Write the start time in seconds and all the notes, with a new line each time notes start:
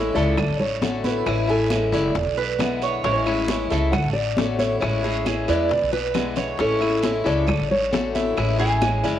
Already playing: A1 E3 G#3 C#4 E4 A4
0.15 C#2 G#3 C#4 E4 A4 D5, short guiro
0.37 D2, muted steel-string acoustic guitar stroke, high bongo, high conga, low conga, long guiro, claves
0.49 A1
0.60 C#5, high bongo, high conga, low conga
0.82 D3 A3 C#4 F#4, high bongo, low bongo, high conga, short guiro
1.04 E4 B4, high bongo, high conga, short guiro
1.26 A1 E3 G#3 C#4 E4, high bongo, high conga, long guiro, claves
1.47 G#3 C#4 E4 A4 G#5, high bongo, high conga
1.70 E3 G#3 C#4 E4, high bongo, high conga, short guiro, claves
1.92 F#1 G#3 C#4 E4 D5, high conga, short guiro
2.15 E1, muted steel-string acoustic guitar stroke, high bongo, high conga, long guiro
2.26 B1
2.37 B4, high bongo, high conga
2.59 D3 G#3 B3 E4, high bongo, low bongo, high conga, short guiro, claves
2.82 C#5, high bongo, high conga, short guiro
3.04 A1 E3 G#3 C#4 E4 C#5, high bongo, high conga, long guiro
3.26 G#3 C#4 E4, high bongo, high conga, claves
3.48 E3 G#3 C#4 E4, high bongo, high conga, short guiro
3.70 C#2 G#3 C#4 E4 A4 E5, short guiro
3.92 D2 F#5, muted steel-string acoustic guitar stroke, high bongo, high conga, low conga, long guiro, claves
4.05 A1
4.13 D5, high bongo, high conga
4.37 D3 A3 C#4 F#4, high bongo, low bongo, high conga, short guiro
4.59 E4 C#5, high bongo, high conga, short guiro
4.80 A1 E3 G#3 C#4 E4 C#5, high bongo, long guiro, claves
5.03 G#3 C#4 E4 G#4, high bongo, high conga
5.25 E3 G#3 C#4 E4, high bongo, high conga, short guiro, claves
5.48 E2 G#3 C#4 E4 B4 D5, high conga, short guiro
5.69 E1, muted steel-string acoustic guitar stroke, high bongo, high conga, long guiro
5.82 B1
5.93 B4, high bongo, high conga
6.14 D3 G#3 B3 E4, low bongo, high conga, short guiro, claves
6.36 C#5, low bongo, short guiro
6.58 A1 E3 G#3 C#4 E4 A4, high bongo, high conga, long guiro
6.80 G#3 C#4 E4, high bongo, high conga, claves
7.02 E3 G#3 C#4 E4, high bongo, high conga, short guiro
7.24 C#2 G#3 C#4 E4 A4 D5, short guiro
7.47 D2, muted steel-string acoustic guitar stroke, high bongo, high conga, low conga, long guiro, claves
7.59 A1
7.71 C#5, high bongo, high conga, low conga
7.91 D3 A3 C#4 F#4, high bongo, low bongo, high conga, short guiro
8.15 E4 E5, high bongo, high conga, short guiro
8.37 A1 E3 G#3 C#4 E4, high bongo, high conga, long guiro, claves
8.58 G#3 C#4 E4 G#4 G#5, high bongo, high conga
8.81 E3 G#3 C#4 E4, high bongo, high conga, short guiro, claves
9.03 F#1 G#3 C#4 E4 D5, high conga, short guiro